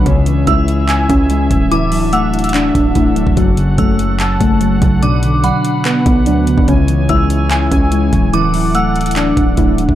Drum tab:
HH |x---x---x---x---x---x---x---x---|x---o---x---xxxxx---x---x---x---|x---x---x---x---x---x---x---x---|x---x---x---x---x---x---x---x---|
CP |----------------x---------------|----------------x---------------|----------------x---------------|----------------x---------------|
BD |o-------o-----------o-------o---|--------------------o---o-----o-|o-------o-----------o-------o---|--------------------o---------o-|

HH |x---x---x---x---x---x---x---x---|x---o---x---xxxxx---x---x---x---|
CP |----------------x---------------|----------------x---------------|
BD |o-------o-----------o-------o---|--------------------o---o-----o-|